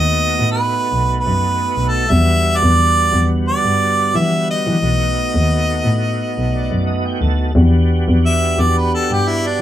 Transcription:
Already playing: D#2 A3 B3 D#4 F#4 D#5
0.40 A2
0.51 B4
0.92 B1
1.20 B4
1.27 F#2
1.76 B1
1.89 A4
2.09 E2 D3 G3 B3 F#4 E5
2.57 D5
2.63 E2
3.13 E2
3.48 D5
3.65 G2
4.14 E3 E5
4.51 D#5
4.67 E3
4.82 B1 A3 B3 D#4 F#4
5.35 D#2
5.85 A2
6.37 B1
6.53 D5
6.71 F#2
6.87 D#5
7.06 G5
7.21 D2 A5
7.55 E2 B3 D4 F#4 G4
8.08 E2
8.26 E5
8.58 E2 D5
8.78 B4
8.95 A4
9.10 G2 G4
9.28 E4
9.47 D4

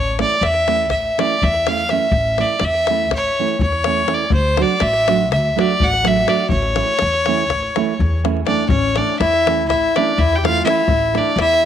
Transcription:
Already playing: A1 C#5
0.19 E3 A3 C#4 E4 D5, davul high
0.41 E2 E5, davul high
0.54 davul high
0.67 E3 A3 C#4 E4, davul high
0.90 A1 E5, davul high, davul low
1.18 E3 A3 C#4 E4 D5, davul high
1.30 davul high
1.42 E2 E5, davul low
1.54 davul high
1.66 E3 A3 C#4 E4 F5, davul high
1.77 davul high
1.89 E3 A3 C#4 E4 E5, davul high
2.11 A1, davul low
2.38 E3 A3 C#4 E4 D5, davul high
2.60 E2, davul high
2.65 E5
2.74 davul high
2.87 E3 A3 C#4 E4, davul high
3.11 A1 C#5, davul high, davul low
3.39 E3 A3 C#4 E4
3.48 davul high
3.59 E2 C#5, davul low
3.72 davul high
3.84 E3 A3 C#4 E4, davul high
3.97 davul high
4.07 E3 A3 C#4 E4, davul high
4.14 D5
4.30 D2 C5, davul low
4.57 F#3 A3 D4 F#4, davul high
4.62 D5
4.80 A1 E5, davul high
4.93 davul high
5.08 F#3 A3 D4 F#4, davul high
5.32 D2 E5, davul high, davul low
5.56 F#3 A3 D4 F#4, davul high
5.61 D5
5.71 davul high
5.80 A1 F#5, davul low
5.93 davul high
6.03 F#3 A3 D4 F#4 E5, davul high
6.16 davul high
6.26 F#3 A3 D4 F#4 D5, davul high
6.49 A1 C#5, davul low
6.62 davul high
6.74 E3 A3 C#4 E4, davul high
6.88 davul high
6.99 E2, davul high
7.13 davul high
7.26 E3 A3 C#4 E4, davul high
7.37 davul high
7.50 A1, davul high, davul low
7.62 davul high
7.76 E3 A3 C#4 E4, davul high
7.99 E2, davul low
8.24 E3 A3 C#4 E4, davul high
8.37 davul high
8.46 E3 A3 C#4 D4 E4 D5, davul high
8.69 A1 C#4 C#5, davul low
8.96 E3 A3 C#4 D4 E4 D5, davul high
9.19 E2 E4 E5, davul high
9.33 davul high
9.46 E3 A3 C#4 E4, davul high
9.68 A1 E4 E5, davul high, davul low
9.96 E3 A3 C#4 D4 E4 D5, davul high
10.09 davul high
10.18 E2 E4 E5, davul low
10.33 G5, davul high
10.38 G4
10.43 E3 A3 C#4 E4 F4 F5, davul high
10.57 davul high
10.64 E3 A3 C#4 E4 E5, davul high
10.70 E4
10.88 A1, davul low
11.13 E3 A3 C#4 E4, davul high
11.17 D4 D5
11.36 E2, davul high
11.40 E4 E5
11.53 davul high

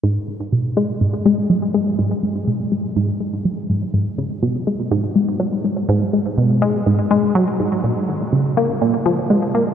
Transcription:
0.04 G#2
0.28 C#3
0.52 B2
0.77 G#3
1.01 G#2
1.26 G#3
1.50 F#3
1.74 G#3
1.99 G#2
2.23 G#3
2.47 B2
2.72 G#3
2.96 G#2
3.20 G#3
3.45 F#3
3.69 G#2
3.94 G#2
4.18 C#3
4.43 B2
4.67 G#3
4.91 G#2
5.16 G#3
5.40 F#3
5.64 G#3
5.89 G#2
6.13 G#3
6.38 B2
6.62 G#3
6.86 G#2
7.11 G#3
7.35 F#3
7.60 G#2
7.84 A#2
8.09 D#3
8.33 C#3
8.57 A#3
8.82 A#2
9.06 F3
9.30 G#3
9.55 A#3

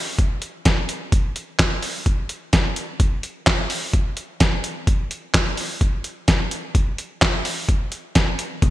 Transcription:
0.19 kick, closed hi-hat
0.42 closed hi-hat
0.65 kick, snare, closed hi-hat
0.89 closed hi-hat
1.12 kick, closed hi-hat
1.36 closed hi-hat
1.59 kick, snare, clap, closed hi-hat
1.82 open hi-hat
2.06 kick, closed hi-hat
2.29 closed hi-hat
2.53 kick, snare, closed hi-hat
2.76 closed hi-hat
3.00 kick, closed hi-hat
3.23 closed hi-hat
3.47 kick, snare, clap, closed hi-hat
3.70 open hi-hat
3.93 kick, closed hi-hat
4.17 closed hi-hat
4.40 kick, snare, closed hi-hat
4.64 closed hi-hat
4.87 kick, closed hi-hat
5.11 closed hi-hat
5.34 kick, snare, clap, closed hi-hat
5.57 open hi-hat
5.81 kick, closed hi-hat
6.04 closed hi-hat
6.28 kick, snare, closed hi-hat
6.51 closed hi-hat
6.75 kick, closed hi-hat
6.98 closed hi-hat
7.22 kick, snare, clap, closed hi-hat
7.45 open hi-hat
7.69 kick, closed hi-hat
7.92 closed hi-hat
8.15 kick, snare, closed hi-hat
8.39 closed hi-hat
8.62 kick, closed hi-hat, high tom

